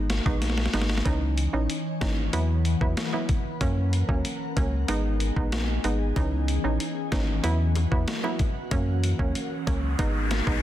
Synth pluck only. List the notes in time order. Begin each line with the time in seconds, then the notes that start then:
Already playing: G#3 B3 D#4
0.26 G#3 B3 D#4
0.74 G#3 B3 D#4
1.05 E3 C#4 D#4
1.53 E3 C#4 D#4
2.01 E3 C#4 D#4
2.33 F#3 B3 E4
2.81 F#3 B3 E4
3.13 F#3 B3 E4
3.61 F#3 A#3 C#4
4.09 F#3 A#3 C#4
4.56 F#3 A#3 C#4
4.88 G#3 B3 D#4
5.36 G#3 B3 D#4
5.84 G#3 B3 D#4
6.16 E3 C#4 D#4
6.64 E3 C#4 D#4
7.12 E3 C#4 D#4
7.43 F#3 B3 E4
7.91 F#3 B3 E4
8.23 F#3 B3 E4
8.71 F#3 A#3 C#4
9.19 F#3 A#3 C#4
9.67 F#3 A#3 C#4
9.99 G#3 B3 D#4
10.47 G#3 B3 D#4